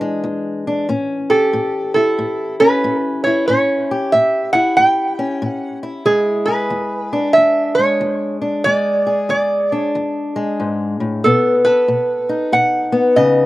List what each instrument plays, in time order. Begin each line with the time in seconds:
Already playing: steel-string acoustic guitar E2 E3 D4 G#4
0.01 steel-string acoustic guitar G#3
0.24 steel-string acoustic guitar E2
0.67 steel-string acoustic guitar D4
0.89 steel-string acoustic guitar A2 C#4
1.30 steel-string acoustic guitar G4, resonator guitar played with a steel bar A4
1.53 steel-string acoustic guitar A2
1.94 steel-string acoustic guitar E4, resonator guitar played with a steel bar A4
2.18 steel-string acoustic guitar A2
2.60 steel-string acoustic guitar C#4, resonator guitar played with a steel bar B4
2.84 steel-string acoustic guitar A2
3.24 steel-string acoustic guitar E4, resonator guitar played with a steel bar C#5
3.48 steel-string acoustic guitar A2 C#4, resonator guitar played with a steel bar C#5
3.91 steel-string acoustic guitar G4
4.12 steel-string acoustic guitar A2, resonator guitar played with a steel bar E5
4.53 steel-string acoustic guitar E4, resonator guitar played with a steel bar F#5
4.77 steel-string acoustic guitar A2, resonator guitar played with a steel bar G5
5.19 steel-string acoustic guitar C#4
5.42 steel-string acoustic guitar A2, resonator guitar played with a steel bar F#5
5.83 steel-string acoustic guitar E4
6.05 steel-string acoustic guitar E2 G#3, resonator guitar played with a steel bar G#4
6.46 steel-string acoustic guitar G#4, resonator guitar played with a steel bar B4
6.70 steel-string acoustic guitar E2
7.13 steel-string acoustic guitar D4
7.33 steel-string acoustic guitar E2, resonator guitar played with a steel bar E5
7.75 steel-string acoustic guitar G#3, resonator guitar played with a steel bar C#5
8.01 steel-string acoustic guitar E2
8.42 steel-string acoustic guitar D4
8.64 steel-string acoustic guitar E2 G#3, resonator guitar played with a steel bar D5
9.07 steel-string acoustic guitar G#4
9.29 steel-string acoustic guitar E2, resonator guitar played with a steel bar D5
9.72 steel-string acoustic guitar D4, resonator guitar played with a steel bar C#5
9.95 steel-string acoustic guitar E2
10.36 steel-string acoustic guitar G#3
10.60 steel-string acoustic guitar G#2
11.00 steel-string acoustic guitar A2
11.24 steel-string acoustic guitar B2 B3, resonator guitar played with a steel bar A4
11.65 steel-string acoustic guitar A4, resonator guitar played with a steel bar B4
11.88 steel-string acoustic guitar B2
12.29 steel-string acoustic guitar D#4
12.52 steel-string acoustic guitar B2, resonator guitar played with a steel bar F#5
12.92 steel-string acoustic guitar B3
13.16 steel-string acoustic guitar C#3, resonator guitar played with a steel bar D#5